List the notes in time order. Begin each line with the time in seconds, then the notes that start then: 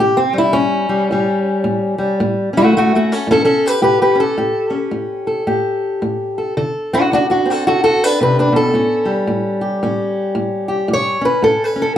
0.00 A2 G4
0.17 C4
0.33 G3
0.38 E4
0.53 A2 C#4
0.89 G3
1.11 A2 G3
1.64 A2
1.98 G3
2.20 A2
2.53 C#4
2.57 A3 F#4
2.73 A2 A3
2.78 F#4
2.95 A3 F#4
3.12 C#4 A4
3.27 A2 C#4
3.32 A4
3.45 C#4 A4
3.66 G4 B4
3.82 A2 G4 B4
4.02 G4 B4
4.15 C#4
4.20 A4
4.38 A2 G4
4.70 C#4
4.91 A2
5.27 A4
5.47 A2 G4
6.02 A2
6.38 A4
6.57 D3 A4
6.93 D4 F#4
7.12 D3 D4 F#4
7.30 D4 F#4
7.45 C4
7.50 F#4 A4
7.67 D3 F#4 A4
7.84 F#4 A4
8.04 D4 B4
8.21 C3 D4 B4
8.39 D4 B4
8.52 B2 A4
8.74 A2 C#4
9.05 G3
9.27 A2
9.61 G4
9.83 A2 C#4
10.35 A2
10.68 G4
10.88 A2
10.93 C#5
11.21 C#4 B4
11.42 A2 A4
11.64 B4
11.76 C#4
11.82 A4